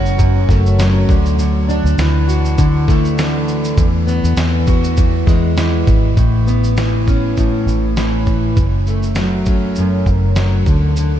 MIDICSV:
0, 0, Header, 1, 4, 480
1, 0, Start_track
1, 0, Tempo, 598802
1, 1107, Time_signature, 4, 2, 24, 8
1, 8975, End_track
2, 0, Start_track
2, 0, Title_t, "Steel-string acoustic guitar"
2, 0, Program_c, 0, 25
2, 0, Note_on_c, 0, 42, 78
2, 0, Note_on_c, 0, 54, 72
2, 0, Note_on_c, 0, 61, 56
2, 0, Note_on_c, 0, 66, 65
2, 138, Note_off_c, 0, 42, 0
2, 148, Note_on_c, 0, 42, 85
2, 391, Note_on_c, 0, 57, 62
2, 626, Note_off_c, 0, 54, 0
2, 629, Note_on_c, 0, 54, 65
2, 875, Note_on_c, 0, 50, 71
2, 917, Note_off_c, 0, 61, 0
2, 920, Note_off_c, 0, 42, 0
2, 1100, Note_off_c, 0, 50, 0
2, 1110, Note_on_c, 0, 50, 77
2, 1352, Note_on_c, 0, 62, 64
2, 1590, Note_off_c, 0, 54, 0
2, 1593, Note_on_c, 0, 52, 64
2, 1617, Note_off_c, 0, 66, 0
2, 1824, Note_on_c, 0, 66, 68
2, 2060, Note_off_c, 0, 50, 0
2, 2070, Note_on_c, 0, 50, 88
2, 2305, Note_off_c, 0, 57, 0
2, 2309, Note_on_c, 0, 57, 60
2, 2547, Note_off_c, 0, 52, 0
2, 2550, Note_on_c, 0, 52, 69
2, 3029, Note_on_c, 0, 40, 72
2, 3080, Note_off_c, 0, 57, 0
2, 3081, Note_off_c, 0, 50, 0
2, 3082, Note_off_c, 0, 62, 0
2, 3262, Note_on_c, 0, 59, 58
2, 3503, Note_off_c, 0, 52, 0
2, 3506, Note_on_c, 0, 52, 69
2, 3530, Note_off_c, 0, 66, 0
2, 3747, Note_on_c, 0, 66, 63
2, 3976, Note_off_c, 0, 40, 0
2, 3986, Note_on_c, 0, 40, 77
2, 4221, Note_on_c, 0, 56, 61
2, 4466, Note_off_c, 0, 52, 0
2, 4469, Note_on_c, 0, 52, 61
2, 4945, Note_on_c, 0, 45, 67
2, 4997, Note_off_c, 0, 56, 0
2, 4999, Note_off_c, 0, 40, 0
2, 5000, Note_off_c, 0, 66, 0
2, 5188, Note_off_c, 0, 59, 0
2, 5188, Note_on_c, 0, 59, 52
2, 5423, Note_off_c, 0, 52, 0
2, 5426, Note_on_c, 0, 52, 60
2, 5667, Note_on_c, 0, 61, 51
2, 5906, Note_off_c, 0, 45, 0
2, 5916, Note_on_c, 0, 45, 75
2, 6380, Note_off_c, 0, 52, 0
2, 6390, Note_on_c, 0, 52, 60
2, 6872, Note_off_c, 0, 45, 0
2, 6880, Note_on_c, 0, 42, 62
2, 6921, Note_off_c, 0, 59, 0
2, 6922, Note_off_c, 0, 52, 0
2, 7116, Note_on_c, 0, 57, 52
2, 7357, Note_on_c, 0, 54, 57
2, 7597, Note_off_c, 0, 61, 0
2, 7600, Note_on_c, 0, 61, 51
2, 7832, Note_off_c, 0, 42, 0
2, 7842, Note_on_c, 0, 42, 82
2, 8314, Note_off_c, 0, 54, 0
2, 8317, Note_on_c, 0, 54, 57
2, 8561, Note_off_c, 0, 54, 0
2, 8565, Note_on_c, 0, 50, 64
2, 8608, Note_off_c, 0, 61, 0
2, 8609, Note_off_c, 0, 42, 0
2, 8794, Note_off_c, 0, 50, 0
2, 8804, Note_on_c, 0, 50, 70
2, 8975, Note_off_c, 0, 50, 0
2, 8975, Note_off_c, 0, 57, 0
2, 8975, End_track
3, 0, Start_track
3, 0, Title_t, "Fingered electric bass"
3, 0, Program_c, 1, 33
3, 0, Note_on_c, 1, 30, 97
3, 354, Note_off_c, 1, 30, 0
3, 389, Note_on_c, 1, 30, 100
3, 836, Note_off_c, 1, 30, 0
3, 870, Note_on_c, 1, 38, 93
3, 1448, Note_off_c, 1, 38, 0
3, 1476, Note_on_c, 1, 38, 82
3, 1577, Note_off_c, 1, 38, 0
3, 1587, Note_on_c, 1, 38, 89
3, 2995, Note_off_c, 1, 38, 0
3, 3028, Note_on_c, 1, 40, 90
3, 3369, Note_off_c, 1, 40, 0
3, 3396, Note_on_c, 1, 40, 78
3, 3496, Note_off_c, 1, 40, 0
3, 3501, Note_on_c, 1, 40, 90
3, 4192, Note_off_c, 1, 40, 0
3, 4227, Note_on_c, 1, 40, 102
3, 4675, Note_off_c, 1, 40, 0
3, 4708, Note_on_c, 1, 32, 89
3, 4928, Note_off_c, 1, 32, 0
3, 4946, Note_on_c, 1, 33, 86
3, 6115, Note_off_c, 1, 33, 0
3, 6146, Note_on_c, 1, 33, 89
3, 6835, Note_off_c, 1, 33, 0
3, 6867, Note_on_c, 1, 30, 75
3, 8037, Note_off_c, 1, 30, 0
3, 8067, Note_on_c, 1, 30, 93
3, 8516, Note_off_c, 1, 30, 0
3, 8546, Note_on_c, 1, 38, 91
3, 8975, Note_off_c, 1, 38, 0
3, 8975, End_track
4, 0, Start_track
4, 0, Title_t, "Drums"
4, 45, Note_on_c, 9, 82, 53
4, 125, Note_off_c, 9, 82, 0
4, 152, Note_on_c, 9, 82, 76
4, 153, Note_on_c, 9, 36, 87
4, 232, Note_off_c, 9, 82, 0
4, 234, Note_off_c, 9, 36, 0
4, 392, Note_on_c, 9, 36, 73
4, 400, Note_on_c, 9, 38, 29
4, 400, Note_on_c, 9, 82, 47
4, 472, Note_off_c, 9, 36, 0
4, 480, Note_off_c, 9, 38, 0
4, 480, Note_off_c, 9, 82, 0
4, 531, Note_on_c, 9, 82, 49
4, 611, Note_off_c, 9, 82, 0
4, 635, Note_on_c, 9, 82, 78
4, 639, Note_on_c, 9, 38, 103
4, 715, Note_off_c, 9, 82, 0
4, 719, Note_off_c, 9, 38, 0
4, 873, Note_on_c, 9, 36, 97
4, 878, Note_on_c, 9, 82, 43
4, 953, Note_off_c, 9, 36, 0
4, 958, Note_off_c, 9, 82, 0
4, 1007, Note_on_c, 9, 82, 51
4, 1087, Note_off_c, 9, 82, 0
4, 1113, Note_on_c, 9, 82, 75
4, 1193, Note_off_c, 9, 82, 0
4, 1359, Note_on_c, 9, 82, 48
4, 1439, Note_off_c, 9, 82, 0
4, 1491, Note_on_c, 9, 82, 53
4, 1571, Note_off_c, 9, 82, 0
4, 1590, Note_on_c, 9, 82, 78
4, 1596, Note_on_c, 9, 38, 127
4, 1670, Note_off_c, 9, 82, 0
4, 1676, Note_off_c, 9, 38, 0
4, 1836, Note_on_c, 9, 82, 54
4, 1916, Note_off_c, 9, 82, 0
4, 1964, Note_on_c, 9, 82, 53
4, 2044, Note_off_c, 9, 82, 0
4, 2068, Note_on_c, 9, 82, 84
4, 2072, Note_on_c, 9, 36, 85
4, 2149, Note_off_c, 9, 82, 0
4, 2152, Note_off_c, 9, 36, 0
4, 2310, Note_on_c, 9, 36, 86
4, 2319, Note_on_c, 9, 38, 35
4, 2319, Note_on_c, 9, 82, 52
4, 2390, Note_off_c, 9, 36, 0
4, 2399, Note_off_c, 9, 38, 0
4, 2399, Note_off_c, 9, 82, 0
4, 2444, Note_on_c, 9, 82, 51
4, 2524, Note_off_c, 9, 82, 0
4, 2552, Note_on_c, 9, 82, 80
4, 2556, Note_on_c, 9, 38, 110
4, 2632, Note_off_c, 9, 82, 0
4, 2636, Note_off_c, 9, 38, 0
4, 2792, Note_on_c, 9, 82, 45
4, 2872, Note_off_c, 9, 82, 0
4, 2921, Note_on_c, 9, 82, 55
4, 3001, Note_off_c, 9, 82, 0
4, 3026, Note_on_c, 9, 82, 78
4, 3027, Note_on_c, 9, 36, 113
4, 3106, Note_off_c, 9, 82, 0
4, 3107, Note_off_c, 9, 36, 0
4, 3268, Note_on_c, 9, 82, 45
4, 3348, Note_off_c, 9, 82, 0
4, 3402, Note_on_c, 9, 82, 55
4, 3482, Note_off_c, 9, 82, 0
4, 3501, Note_on_c, 9, 82, 74
4, 3507, Note_on_c, 9, 38, 123
4, 3582, Note_off_c, 9, 82, 0
4, 3587, Note_off_c, 9, 38, 0
4, 3742, Note_on_c, 9, 82, 57
4, 3749, Note_on_c, 9, 36, 89
4, 3823, Note_off_c, 9, 82, 0
4, 3829, Note_off_c, 9, 36, 0
4, 3879, Note_on_c, 9, 82, 55
4, 3959, Note_off_c, 9, 82, 0
4, 3985, Note_on_c, 9, 82, 89
4, 3990, Note_on_c, 9, 36, 88
4, 4065, Note_off_c, 9, 82, 0
4, 4070, Note_off_c, 9, 36, 0
4, 4226, Note_on_c, 9, 36, 82
4, 4232, Note_on_c, 9, 38, 29
4, 4232, Note_on_c, 9, 82, 46
4, 4307, Note_off_c, 9, 36, 0
4, 4312, Note_off_c, 9, 38, 0
4, 4312, Note_off_c, 9, 82, 0
4, 4466, Note_on_c, 9, 82, 78
4, 4470, Note_on_c, 9, 38, 101
4, 4546, Note_off_c, 9, 82, 0
4, 4550, Note_off_c, 9, 38, 0
4, 4708, Note_on_c, 9, 82, 43
4, 4709, Note_on_c, 9, 36, 92
4, 4788, Note_off_c, 9, 82, 0
4, 4789, Note_off_c, 9, 36, 0
4, 4948, Note_on_c, 9, 36, 94
4, 4948, Note_on_c, 9, 82, 73
4, 5028, Note_off_c, 9, 36, 0
4, 5028, Note_off_c, 9, 82, 0
4, 5190, Note_on_c, 9, 82, 43
4, 5271, Note_off_c, 9, 82, 0
4, 5321, Note_on_c, 9, 82, 46
4, 5401, Note_off_c, 9, 82, 0
4, 5427, Note_on_c, 9, 82, 72
4, 5432, Note_on_c, 9, 38, 104
4, 5507, Note_off_c, 9, 82, 0
4, 5512, Note_off_c, 9, 38, 0
4, 5673, Note_on_c, 9, 36, 84
4, 5673, Note_on_c, 9, 82, 44
4, 5753, Note_off_c, 9, 36, 0
4, 5753, Note_off_c, 9, 82, 0
4, 5909, Note_on_c, 9, 82, 79
4, 5913, Note_on_c, 9, 36, 76
4, 5989, Note_off_c, 9, 82, 0
4, 5993, Note_off_c, 9, 36, 0
4, 6155, Note_on_c, 9, 82, 46
4, 6235, Note_off_c, 9, 82, 0
4, 6387, Note_on_c, 9, 82, 78
4, 6391, Note_on_c, 9, 38, 95
4, 6467, Note_off_c, 9, 82, 0
4, 6471, Note_off_c, 9, 38, 0
4, 6627, Note_on_c, 9, 82, 37
4, 6630, Note_on_c, 9, 36, 75
4, 6707, Note_off_c, 9, 82, 0
4, 6710, Note_off_c, 9, 36, 0
4, 6868, Note_on_c, 9, 82, 63
4, 6869, Note_on_c, 9, 36, 94
4, 6948, Note_off_c, 9, 82, 0
4, 6949, Note_off_c, 9, 36, 0
4, 7108, Note_on_c, 9, 82, 44
4, 7188, Note_off_c, 9, 82, 0
4, 7236, Note_on_c, 9, 82, 46
4, 7316, Note_off_c, 9, 82, 0
4, 7336, Note_on_c, 9, 82, 66
4, 7341, Note_on_c, 9, 38, 100
4, 7416, Note_off_c, 9, 82, 0
4, 7422, Note_off_c, 9, 38, 0
4, 7580, Note_on_c, 9, 82, 52
4, 7589, Note_on_c, 9, 36, 88
4, 7660, Note_off_c, 9, 82, 0
4, 7669, Note_off_c, 9, 36, 0
4, 7819, Note_on_c, 9, 82, 72
4, 7899, Note_off_c, 9, 82, 0
4, 8066, Note_on_c, 9, 36, 68
4, 8067, Note_on_c, 9, 82, 42
4, 8147, Note_off_c, 9, 36, 0
4, 8147, Note_off_c, 9, 82, 0
4, 8302, Note_on_c, 9, 82, 70
4, 8307, Note_on_c, 9, 38, 99
4, 8383, Note_off_c, 9, 82, 0
4, 8387, Note_off_c, 9, 38, 0
4, 8548, Note_on_c, 9, 82, 36
4, 8549, Note_on_c, 9, 36, 97
4, 8628, Note_off_c, 9, 82, 0
4, 8629, Note_off_c, 9, 36, 0
4, 8789, Note_on_c, 9, 82, 80
4, 8869, Note_off_c, 9, 82, 0
4, 8975, End_track
0, 0, End_of_file